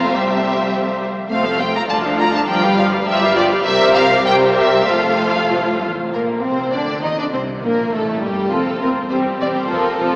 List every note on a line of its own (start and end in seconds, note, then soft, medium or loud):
0.08 1.08 C2 medium
0.08 1.08 G3 soft
0.08 1.08 C4 soft
0.08 1.11 G4 medium
0.08 1.09 C5 medium
0.08 1.00 E5 medium
1.29 1.83 F1 medium
1.29 1.82 F2 medium
1.29 1.43 A3 medium
1.29 1.43 C4 soft
1.29 1.44 F4 soft
1.29 1.45 C5 medium
1.29 1.58 F5 medium
1.44 1.60 F3 medium
1.44 1.59 A3 medium
1.44 1.60 A4 soft
1.44 1.59 F5 soft
1.59 1.73 A3 soft
1.59 1.75 C4 soft
1.59 1.74 F4 soft
1.59 1.74 C5 soft
1.59 1.75 G5 medium
1.74 1.89 F3 soft
1.74 1.89 A3 soft
1.74 1.90 A4 soft
1.74 1.90 F5 soft
1.74 1.81 A#5 medium
1.88 2.41 D2 medium
1.88 2.42 D2 medium
1.88 2.03 D3 medium
1.88 2.03 F4 soft
1.88 2.03 D5 medium
1.88 1.97 A5 medium
2.03 2.19 F3 medium
2.03 2.19 D4 soft
2.03 2.18 A4 medium
2.03 2.18 F5 soft
2.18 2.33 D3 medium
2.18 2.33 F4 soft
2.18 2.33 D5 soft
2.18 2.33 A#5 medium
2.31 2.47 F3 soft
2.31 2.49 D4 soft
2.31 2.47 A4 medium
2.31 2.47 F5 soft
2.31 2.40 A5 medium
2.47 3.00 G1 medium
2.47 3.00 G2 medium
2.47 2.62 F3 medium
2.47 2.62 F4 medium
2.47 2.61 G4 medium
2.47 2.62 D5 medium
2.47 2.77 G5 medium
2.63 2.78 G3 medium
2.63 2.78 G4 soft
2.63 2.78 B4 medium
2.63 2.78 F5 medium
2.77 2.93 F3 medium
2.77 2.93 F4 medium
2.77 2.93 G4 soft
2.77 2.93 D5 medium
2.77 2.85 F5 medium
2.92 3.07 G3 medium
2.92 3.07 G4 soft
2.92 3.08 B4 medium
2.92 3.08 F5 medium
3.06 3.59 G1 medium
3.06 3.59 G2 medium
3.06 3.21 F3 medium
3.06 3.21 F4 medium
3.06 3.22 G4 medium
3.06 3.22 D5 medium
3.06 3.35 E5 medium
3.22 3.36 G3 medium
3.22 3.36 G4 medium
3.22 3.37 B4 medium
3.22 3.37 F5 medium
3.36 3.51 F3 medium
3.36 3.51 F4 medium
3.36 3.52 G4 medium
3.36 3.44 D5 medium
3.36 3.52 D5 medium
3.51 3.65 G3 medium
3.51 3.65 G4 medium
3.51 3.66 B4 medium
3.51 3.66 F5 medium
3.65 4.84 C2 medium
3.65 4.84 C3 medium
3.65 4.22 G3 medium
3.65 4.22 G4 medium
3.65 4.22 A#4 medium
3.65 4.22 C5 medium
3.65 3.94 E5 loud
3.95 4.25 F5 medium
4.25 4.86 G3 medium
4.25 4.86 G4 medium
4.25 4.86 A#4 medium
4.25 4.86 C5 medium
4.25 4.34 G5 medium
4.57 4.87 E5 medium
4.86 5.92 F1 medium
4.86 5.44 F2 medium
4.86 5.91 A3 medium
4.86 5.89 F4 medium
4.86 5.93 A4 medium
4.86 5.90 C5 medium
4.86 5.82 F5 medium
5.51 5.79 A2 medium
5.82 6.12 E2 medium
6.12 6.41 A#1 soft
6.12 6.41 A#2 soft
6.12 6.41 A#3 soft
6.12 6.21 A#4 medium
6.42 6.74 C2 soft
6.42 6.73 C3 medium
6.42 6.73 C4 medium
6.42 6.73 C4 soft
6.42 6.73 C5 medium
6.72 7.04 D2 soft
6.72 7.04 D3 medium
6.72 7.03 D4 soft
6.72 6.82 D4 soft
6.72 7.03 D5 medium
7.03 7.10 D#2 medium
7.03 7.10 D#3 soft
7.03 7.18 D#4 soft
7.03 7.09 D#4 soft
7.03 7.18 D#5 medium
7.18 7.33 D3 soft
7.18 7.24 D4 soft
7.18 7.25 D5 soft
7.33 7.63 C2 medium
7.33 7.63 C3 medium
7.33 7.41 C4 soft
7.33 7.42 C5 medium
7.62 7.93 A#1 soft
7.62 7.93 A#2 soft
7.62 7.92 A#3 soft
7.62 7.92 A#3 medium
7.62 7.93 A#4 medium
7.92 8.22 A1 soft
7.92 8.22 A2 medium
7.92 8.21 A3 soft
7.92 8.22 A3 medium
7.92 8.22 A4 soft
8.21 8.52 G1 medium
8.21 8.52 G2 soft
8.21 8.51 G3 medium
8.21 8.52 G3 soft
8.21 8.51 G4 medium
8.49 8.59 F1 soft
8.49 8.61 F2 soft
8.49 8.80 C4 soft
8.49 8.78 F4 soft
8.49 8.81 A4 medium
8.79 8.90 F1 soft
8.79 8.90 F2 soft
8.79 9.10 C4 soft
8.79 9.09 F4 soft
8.79 8.89 A#4 medium
9.10 9.19 E1 soft
9.10 9.18 E2 soft
9.10 9.39 G3 soft
9.10 9.38 C4 soft
9.10 9.39 C4 soft
9.10 9.39 G4 soft
9.10 9.18 C5 medium
9.40 9.48 E1 soft
9.40 9.48 E2 soft
9.40 9.69 G3 soft
9.40 9.69 C4 soft
9.40 9.68 C4 soft
9.40 9.69 G4 soft
9.40 9.47 D5 medium
9.55 9.70 C5 medium
9.67 9.79 F1 medium
9.67 9.79 F2 medium
9.67 9.98 F3 soft
9.67 9.98 C4 soft
9.67 9.97 F4 soft
9.67 9.97 A4 soft
9.67 10.00 A#4 medium
9.98 10.08 F1 soft
9.98 10.08 F2 medium
9.98 10.16 F3 soft
9.98 10.16 C4 soft
9.98 10.16 F4 soft
9.98 10.16 A4 soft
9.98 10.16 A4 medium